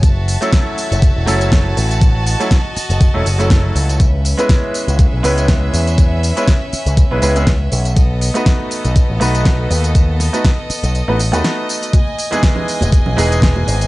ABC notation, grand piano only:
X:1
M:4/4
L:1/16
Q:"Swing 16ths" 1/4=121
K:C#m
V:1 name="Grand piano"
z3 [F,A,CEA]6- [F,A,CEA] [F,A,CEA]6- | [F,A,CEA]3 [F,A,CEA] z4 z [F,A,CEA] z [F,A,CEA]4- [F,A,CEA] | z3 [G,B,CEB]6- [G,B,CEB] [G,B,CEB]6- | [G,B,CEB]3 [G,B,CEB] z4 z [G,B,CEB] [G,B,CEB] [G,B,CEG] z4 |
z3 [A,B,DFB]6- [A,B,DFB] [A,B,DFB]6- | [A,B,DFB]3 [A,B,DFB] z4 z [A,B,DFB] z [A,B,DFB]4- [A,B,DFB] | z3 [E,G,B,DG]6- [E,G,B,DG] [E,G,B,DG]6 |]